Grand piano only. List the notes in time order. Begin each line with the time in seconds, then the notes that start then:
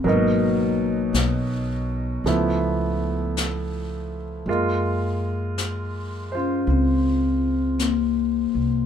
0.04 B2 F#3 A#4
0.08 D#4
2.26 F3 A3 B3 E4
4.48 G#3 A#3 F4
6.32 F4 C5